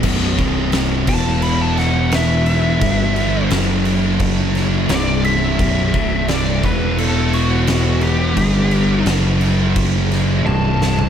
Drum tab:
CC |x-x-x-x-x-x-x-x-|x-x-x-x-x-x-x-x-|x-x-x-x-x-x-x-x-|x-x-x-x-x-x-----|
SD |----o-----o-o---|----o-----o-o---|----o-------o---|----o-----o---o-|
T1 |----------------|----------------|----------------|------------o---|
FT |----------------|----------------|----------------|---------------o|
BD |o-o---o---------|o-------o-------|o-o---o---------|o-------o-------|